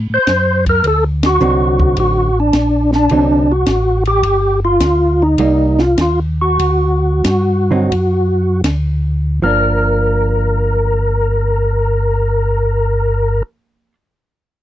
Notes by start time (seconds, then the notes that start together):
0.10 A2
0.14 C5
0.27 F#2, kick, snare, hi-hat pedal, ride
0.66 A#4, kick, ride
0.84 D2 A4, kick, ride
1.23 F#4, snare, ride
1.40 C2 D3 F#3 C4 D#4, hi-hat pedal
1.79 kick
1.97 A1 F#4, kick, ride
2.40 D4
2.53 A#1, kick, snare, hi-hat pedal, ride
2.92 D4, snare
3.09 C2 D3 F#3 C4 D#4, kick, ride
3.52 F#4
3.66 A1, kick, snare, hi-hat pedal, ride
4.05 G4, ride
4.23 G1, kick, ride
4.65 F4
4.80 D2, kick, snare, hi-hat pedal, ride
5.22 D#4
5.38 C2 G3 A#3 D#4, kick, ride
5.79 F4, snare
5.98 D#2 F4, kick, snare, hi-hat pedal, ride
6.42 F#4
6.59 D2, kick, ride
7.24 G2, kick, snare, hi-hat pedal, ride
7.71 D3 F#3 C4 D#4
7.92 F#2, kick, ride
8.64 D2, kick, snare, hi-hat pedal, ride
9.42 G1 F3 A#3 D4 A#4